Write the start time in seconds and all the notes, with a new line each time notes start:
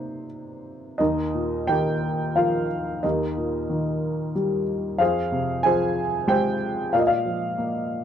Already playing: C3 A#3 C4 D#4 C5
0.98 D#2 D#4 A#4 D#5
1.34 A#2
1.67 D#3 G4 A#4 G5
2.36 F3 F4 A#4 F5
3.03 D#2 D#4 G4 A#4 D#5
3.37 A#2
3.69 D#3
4.35 G3
4.98 F2 F4 G#4 C5 F5
5.32 C3
5.63 F3 G#4 C5 G#5
6.28 G#3 G4 C5 G5
6.93 A#2 F4 A#4 D5 F5
6.99 D#5
7.07 F4 D5 F5
7.25 F3
7.58 A#3